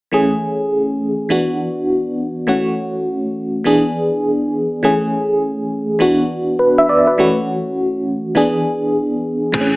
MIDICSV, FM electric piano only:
0, 0, Header, 1, 2, 480
1, 0, Start_track
1, 0, Key_signature, 3, "major"
1, 0, Tempo, 588235
1, 105, Time_signature, 4, 2, 24, 8
1, 7967, End_track
2, 0, Start_track
2, 0, Title_t, "FM electric piano"
2, 0, Program_c, 0, 5
2, 94, Note_on_c, 0, 52, 64
2, 102, Note_on_c, 0, 57, 67
2, 107, Note_on_c, 0, 61, 63
2, 114, Note_on_c, 0, 68, 74
2, 252, Control_c, 0, 64, 127
2, 1040, Note_off_c, 0, 52, 0
2, 1044, Note_off_c, 0, 57, 0
2, 1047, Note_off_c, 0, 61, 0
2, 1050, Note_off_c, 0, 68, 0
2, 1053, Note_on_c, 0, 52, 72
2, 1062, Note_on_c, 0, 59, 67
2, 1068, Note_on_c, 0, 62, 63
2, 1074, Control_c, 0, 64, 0
2, 1075, Note_on_c, 0, 66, 74
2, 1241, Control_c, 0, 64, 127
2, 1999, Note_off_c, 0, 52, 0
2, 2004, Note_off_c, 0, 59, 0
2, 2007, Note_off_c, 0, 62, 0
2, 2011, Note_off_c, 0, 66, 0
2, 2014, Note_on_c, 0, 52, 67
2, 2020, Note_on_c, 0, 57, 68
2, 2026, Note_on_c, 0, 61, 58
2, 2032, Note_on_c, 0, 66, 72
2, 2035, Control_c, 0, 64, 0
2, 2192, Control_c, 0, 64, 127
2, 2960, Note_off_c, 0, 52, 0
2, 2963, Note_off_c, 0, 57, 0
2, 2966, Note_off_c, 0, 61, 0
2, 2969, Note_off_c, 0, 66, 0
2, 2973, Note_on_c, 0, 52, 71
2, 2980, Note_on_c, 0, 59, 64
2, 2986, Note_on_c, 0, 62, 68
2, 2993, Note_on_c, 0, 68, 80
2, 2995, Control_c, 0, 64, 0
2, 3143, Control_c, 0, 64, 127
2, 3920, Note_off_c, 0, 52, 0
2, 3923, Note_off_c, 0, 59, 0
2, 3927, Note_off_c, 0, 62, 0
2, 3930, Note_off_c, 0, 68, 0
2, 3939, Note_on_c, 0, 52, 74
2, 3946, Note_on_c, 0, 57, 67
2, 3951, Note_on_c, 0, 61, 61
2, 3956, Note_on_c, 0, 68, 76
2, 3957, Control_c, 0, 64, 0
2, 4081, Control_c, 0, 64, 127
2, 4878, Note_off_c, 0, 52, 0
2, 4886, Note_off_c, 0, 57, 0
2, 4888, Note_on_c, 0, 52, 66
2, 4889, Note_off_c, 0, 61, 0
2, 4891, Note_off_c, 0, 68, 0
2, 4895, Note_on_c, 0, 59, 64
2, 4901, Note_on_c, 0, 62, 64
2, 4909, Note_on_c, 0, 66, 74
2, 4915, Control_c, 0, 64, 0
2, 5059, Control_c, 0, 64, 127
2, 5379, Note_on_c, 0, 71, 65
2, 5525, Note_off_c, 0, 71, 0
2, 5535, Note_on_c, 0, 76, 73
2, 5620, Note_off_c, 0, 76, 0
2, 5625, Note_on_c, 0, 74, 69
2, 5768, Note_off_c, 0, 74, 0
2, 5771, Note_on_c, 0, 71, 61
2, 5837, Note_off_c, 0, 52, 0
2, 5841, Note_off_c, 0, 59, 0
2, 5844, Note_off_c, 0, 62, 0
2, 5848, Note_off_c, 0, 66, 0
2, 5858, Note_on_c, 0, 52, 69
2, 5864, Note_on_c, 0, 57, 63
2, 5869, Note_on_c, 0, 61, 64
2, 5876, Control_c, 0, 64, 0
2, 5876, Note_on_c, 0, 66, 76
2, 6001, Note_off_c, 0, 71, 0
2, 6027, Control_c, 0, 64, 127
2, 6802, Note_off_c, 0, 52, 0
2, 6805, Note_off_c, 0, 57, 0
2, 6808, Note_off_c, 0, 61, 0
2, 6811, Note_off_c, 0, 66, 0
2, 6813, Note_on_c, 0, 52, 69
2, 6816, Note_on_c, 0, 59, 65
2, 6825, Note_on_c, 0, 62, 66
2, 6831, Note_on_c, 0, 68, 75
2, 6836, Control_c, 0, 64, 0
2, 6975, Control_c, 0, 64, 127
2, 7759, Note_off_c, 0, 52, 0
2, 7761, Note_off_c, 0, 59, 0
2, 7766, Note_off_c, 0, 62, 0
2, 7769, Note_off_c, 0, 68, 0
2, 7771, Note_on_c, 0, 52, 75
2, 7778, Note_on_c, 0, 57, 66
2, 7785, Note_on_c, 0, 60, 55
2, 7792, Note_on_c, 0, 68, 78
2, 7794, Control_c, 0, 64, 0
2, 7838, Note_on_c, 0, 61, 73
2, 7852, Note_off_c, 0, 60, 0
2, 7949, Control_c, 0, 64, 127
2, 7967, Note_off_c, 0, 52, 0
2, 7967, Note_off_c, 0, 57, 0
2, 7967, Note_off_c, 0, 61, 0
2, 7967, Note_off_c, 0, 68, 0
2, 7967, End_track
0, 0, End_of_file